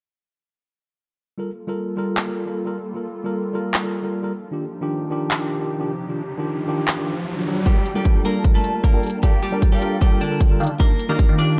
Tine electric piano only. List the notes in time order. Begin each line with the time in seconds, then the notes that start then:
1.38 G3 F4 A4 A#4
1.67 G3 F4 A4 A#4
1.96 G3 F4 A4 A#4
2.26 G3 F4 A4 A#4
2.46 G3 F4 A4 A#4
2.65 G3 F4 A4 A#4
2.94 G3 F4 A4 A#4
3.24 G3 F4 A4 A#4
3.53 G3 F4 A4 A#4
3.83 G3 F4 A4 A#4
4.02 G3 F4 A4 A#4
4.22 G3 F4 A4 A#4
4.51 D#3 D4 F4 G4
4.81 D#3 D4 F4 G4
5.10 D#3 D4 F4 G4
5.40 D#3 D4 F4 G4
5.59 D#3 D4 F4 G4
5.79 D#3 D4 F4 G4
6.08 D#3 D4 F4 G4
6.38 D#3 D4 F4 G4
6.67 D#3 D4 F4 G4
6.97 D#3 D4 F4 G4
7.36 D#3 D4 F4 G4
7.45 D#3 D4 F4 G4
7.65 G3 F4 A4 A#4
7.94 G3 F4 A4 A#4
8.24 G3 F4 A4 A#4
8.53 G3 F4 A4 A#4
8.73 G3 F4 A4 A#4
8.93 G3 F4 A4 A#4
9.22 G3 F4 A4 A#4
9.51 G3 F4 A4 A#4
9.81 G3 F4 A4 A#4
10.10 G3 F4 A4 A#4
10.30 G3 F4 A4 A#4
10.49 G3 F4 A4 A#4
10.79 D#3 D4 F4 G4
11.08 D#3 D4 F4 G4
11.38 D#3 D4 F4 G4